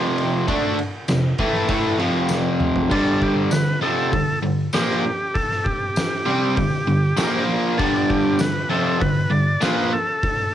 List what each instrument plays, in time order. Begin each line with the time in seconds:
Already playing: overdriven electric guitar F2 C3 F3
0.18 ride
0.47 overdriven electric guitar D3 A3 D4, kick, ride
0.78 muted overdriven electric guitar stroke, ride
1.08 overdriven electric guitar F2 C3, snare, ride, tambourine
1.38 overdriven electric guitar A2 E3 A3, kick, ride
1.54 snare
1.69 overdriven electric guitar A2 E3 A3, kick, ride
1.99 overdriven electric guitar F2 C3 F3, ride
2.29 snare, tambourine
2.60 mid tom
2.76 floor tom
2.90 overdriven electric guitar G2 D3 G3, transistor combo organ D4, kick, crash
3.22 transistor combo organ G4, kick
3.51 overdriven electric guitar G2 D3, transistor combo organ B4, snare, open hi-hat, tambourine
3.81 overdriven electric guitar F2 C3 F3, transistor combo organ A4
4.12 overdriven electric guitar G2 D3, kick, open hi-hat
4.43 overdriven electric guitar G2 D3
4.73 overdriven electric guitar A#2 F3 A#3, transistor combo organ G4, snare, open hi-hat, tambourine
4.91 snare
5.34 transistor combo organ A4, kick, open hi-hat
5.51 snare
5.64 transistor combo organ G4, kick
5.96 snare, open hi-hat, tambourine
6.26 overdriven electric guitar C3 G3 C4
6.56 overdriven electric guitar G2 D3, transistor combo organ G4, kick, open hi-hat
6.87 overdriven electric guitar G2 D3
7.17 overdriven electric guitar A#2 F3 A#3, snare, open hi-hat, tambourine
7.77 overdriven electric guitar G2 D3 G3, transistor combo organ D4, kick, open hi-hat
8.09 transistor combo organ G4, kick
8.39 overdriven electric guitar G2 D3, transistor combo organ B4, snare, open hi-hat, tambourine
8.70 overdriven electric guitar F2 C3 F3, transistor combo organ A4
8.99 overdriven electric guitar G2 D3, transistor combo organ B4, kick, open hi-hat
9.30 overdriven electric guitar G2 D3, transistor combo organ D5
9.61 overdriven electric guitar A#2 F3 A#3, transistor combo organ B4, snare, open hi-hat, tambourine
9.93 transistor combo organ A4
10.23 kick, open hi-hat